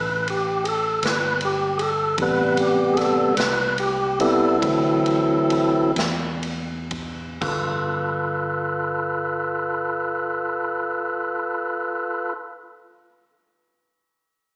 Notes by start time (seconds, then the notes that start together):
Already playing: A1 B4
0.28 G4, ride
0.64 G#4, ride
0.68 A4
1.03 G1 B4, snare, ride
1.41 ride
1.45 G4
1.78 G#4, ride
1.82 A4
2.18 A1 C3 G3 B4, kick, ride
2.22 B3
2.57 G4, ride
2.94 G#4, ride
2.98 A4, snare
3.37 C2 B4, snare, ride
3.78 G4, ride
4.20 C3 G3 B3 E4 A4, ride
4.61 D2 E3 F#3 C4, kick, ride
5.06 ride
5.50 ride
5.96 E2, snare, ride
6.43 ride
6.91 kick, ride
7.41 G1 F4 A4 B4, kick, floor tom, splash